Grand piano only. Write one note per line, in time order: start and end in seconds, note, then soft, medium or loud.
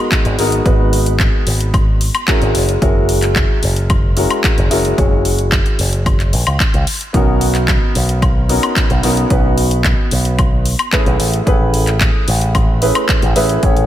0.00 0.35 G#3 medium
0.00 0.35 B3 medium
0.00 0.35 D#4 medium
0.00 0.35 F#4 medium
0.00 0.36 A#4 medium
0.38 0.62 G#3 medium
0.38 0.62 B3 medium
0.38 0.63 D#4 medium
0.38 0.63 F#4 medium
0.38 0.63 A#4 medium
0.65 1.97 G#3 medium
0.65 1.97 B3 medium
0.65 1.98 D#4 medium
0.65 1.98 F#4 medium
0.65 1.98 B4 medium
2.27 2.78 G#3 medium
2.27 2.79 C#4 medium
2.27 2.79 E4 medium
2.27 2.79 F#4 medium
2.27 2.79 A#4 medium
2.81 4.13 G#3 medium
2.81 4.14 C#4 medium
2.81 4.14 E4 medium
2.81 4.14 F#4 medium
2.81 4.14 A#4 medium
4.16 4.68 G#3 medium
4.16 4.68 C#4 medium
4.16 4.68 E4 medium
4.16 4.68 F#4 medium
4.16 4.68 A#4 medium
4.70 4.94 G#3 medium
4.70 4.95 C#4 medium
4.70 4.95 E4 medium
4.70 4.95 F#4 medium
4.70 4.95 A#4 medium
4.97 6.29 G#3 medium
4.97 6.30 C#4 medium
4.97 6.30 E4 medium
4.97 6.30 F#4 medium
4.97 6.30 C#5 medium
7.13 8.46 B3 medium
7.13 8.46 C#4 medium
7.13 8.46 D#4 medium
7.13 8.46 F#4 medium
7.13 8.47 A#4 medium
8.49 9.00 B3 medium
8.49 9.00 C#4 medium
8.49 9.00 D#4 medium
8.49 9.00 F#4 medium
8.49 9.01 A#4 medium
9.03 9.27 B3 medium
9.03 9.27 C#4 medium
9.03 9.27 D#4 medium
9.03 9.28 F#4 medium
9.03 9.28 A#4 medium
9.30 10.62 B3 medium
9.30 10.62 C#4 medium
9.30 10.63 D#4 medium
9.30 10.63 F#4 medium
9.30 10.63 B4 medium
10.92 11.43 A3 medium
10.92 11.44 C#4 medium
10.92 11.44 E4 medium
10.92 11.44 G#4 medium
10.92 11.44 B4 medium
11.46 12.78 A3 medium
11.46 12.78 C#4 medium
11.46 12.79 E4 medium
11.46 12.79 G#4 medium
11.46 12.79 B4 medium
12.81 13.33 A3 medium
12.81 13.33 C#4 medium
12.81 13.33 E4 medium
12.81 13.33 G#4 medium
12.81 13.33 B4 medium
13.35 13.60 A3 medium
13.35 13.60 C#4 medium
13.35 13.60 E4 medium
13.35 13.60 G#4 medium
13.35 13.60 B4 medium
13.62 13.86 A3 medium
13.62 13.86 C#4 medium
13.62 13.86 E4 medium
13.62 13.86 G#4 medium
13.62 13.86 C#5 medium